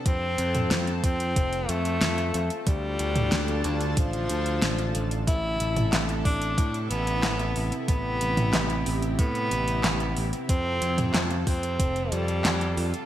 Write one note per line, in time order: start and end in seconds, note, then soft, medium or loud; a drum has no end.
0.00 5.24 A4 medium
0.06 0.35 F2 loud
0.06 2.64 C4 medium
0.06 0.91 C4 loud
0.06 2.64 F4 medium
0.06 kick loud
0.06 closed hi-hat medium
0.38 0.68 F2 medium
0.38 closed hi-hat medium
0.55 closed hi-hat medium
0.55 mid tom medium
0.71 1.00 F2 loud
0.71 snare loud
0.71 closed hi-hat medium
0.87 closed hi-hat soft
1.04 1.33 F2 medium
1.04 1.71 C4 loud
1.04 kick loud
1.04 closed hi-hat medium
1.20 closed hi-hat medium
1.36 1.66 F1 loud
1.36 kick loud
1.36 closed hi-hat medium
1.53 closed hi-hat soft
1.69 1.98 F2 loud
1.69 2.54 A3 loud
1.69 closed hi-hat medium
1.85 closed hi-hat medium
2.01 2.31 F2 medium
2.01 snare loud
2.01 closed hi-hat medium
2.18 closed hi-hat soft
2.34 2.49 F2 medium
2.34 closed hi-hat medium
2.50 closed hi-hat medium
2.67 2.96 D2 loud
2.67 5.25 D3 medium
2.67 3.84 G3 loud
2.67 5.25 D4 medium
2.67 5.25 F4 medium
2.67 5.25 A5 loud
2.67 kick loud
2.67 closed hi-hat medium
2.99 3.29 D2 medium
2.99 closed hi-hat medium
3.16 closed hi-hat medium
3.16 mid tom medium
3.32 3.61 D2 loud
3.32 snare loud
3.32 closed hi-hat medium
3.48 closed hi-hat soft
3.64 3.94 D2 medium
3.64 closed hi-hat medium
3.81 closed hi-hat medium
3.97 4.26 A1 loud
3.97 5.15 F3 loud
3.97 kick loud
3.97 closed hi-hat medium
4.13 closed hi-hat soft
4.29 4.59 D2 loud
4.29 closed hi-hat medium
4.46 closed hi-hat medium
4.62 4.92 A1 medium
4.62 snare loud
4.62 closed hi-hat medium
4.78 closed hi-hat soft
4.95 5.24 A1 medium
4.95 closed hi-hat medium
5.11 closed hi-hat medium
5.27 5.57 A1 loud
5.27 13.06 C3 medium
5.27 6.12 E4 loud
5.27 10.45 E4 medium
5.27 7.86 A4 medium
5.27 kick loud
5.27 closed hi-hat medium
5.60 5.89 A1 medium
5.60 closed hi-hat medium
5.76 closed hi-hat medium
5.76 mid tom loud
5.93 6.22 A1 loud
5.93 snare loud
5.93 clap medium
5.93 closed hi-hat medium
6.09 closed hi-hat soft
6.25 6.55 A1 medium
6.25 6.79 D4 medium
6.25 kick loud
6.25 open hi-hat medium
6.42 closed hi-hat soft
6.58 6.87 A2 loud
6.58 kick loud
6.58 closed hi-hat medium
6.74 closed hi-hat soft
6.90 7.20 A1 loud
6.90 7.75 B3 loud
6.90 closed hi-hat medium
7.07 closed hi-hat soft
7.23 snare loud
7.23 clap medium
7.23 closed hi-hat medium
7.40 closed hi-hat soft
7.56 7.71 A1 medium
7.56 open hi-hat medium
7.72 closed hi-hat medium
7.88 8.18 A1 loud
7.88 9.06 B3 loud
7.88 10.47 G4 medium
7.88 kick loud
7.88 closed hi-hat medium
8.21 8.50 A1 medium
8.21 closed hi-hat medium
8.37 closed hi-hat medium
8.37 mid tom loud
8.53 8.83 A1 loud
8.53 snare loud
8.53 clap medium
8.53 closed hi-hat medium
8.70 closed hi-hat soft
8.86 9.16 A1 medium
8.86 open hi-hat medium
9.02 closed hi-hat soft
9.19 9.48 A2 loud
9.19 10.36 B3 loud
9.19 kick loud
9.19 closed hi-hat medium
9.35 closed hi-hat soft
9.51 9.81 A1 loud
9.51 closed hi-hat medium
9.68 closed hi-hat medium
9.84 10.13 A1 medium
9.84 snare loud
9.84 clap loud
9.84 closed hi-hat medium
10.00 closed hi-hat soft
10.17 10.31 A1 medium
10.17 open hi-hat medium
10.33 closed hi-hat medium
10.49 10.79 F2 loud
10.49 11.34 C4 loud
10.49 13.06 F4 medium
10.49 13.06 A4 loud
10.49 kick loud
10.49 closed hi-hat medium
10.82 11.11 F2 medium
10.82 closed hi-hat medium
10.98 closed hi-hat medium
10.98 mid tom loud
11.14 11.44 F2 loud
11.14 snare loud
11.14 clap loud
11.14 closed hi-hat medium
11.31 closed hi-hat soft
11.47 11.76 F2 medium
11.47 12.13 C4 medium
11.47 kick loud
11.47 open hi-hat medium
11.63 closed hi-hat medium
11.80 12.09 F1 loud
11.80 kick loud
11.80 closed hi-hat medium
11.96 closed hi-hat soft
12.12 12.42 F2 loud
12.12 12.97 G3 loud
12.12 closed hi-hat medium
12.28 closed hi-hat soft
12.45 12.74 F2 medium
12.45 snare loud
12.45 clap loud
12.45 closed hi-hat medium
12.61 closed hi-hat soft
12.77 12.92 F2 medium
12.77 open hi-hat medium
12.94 closed hi-hat medium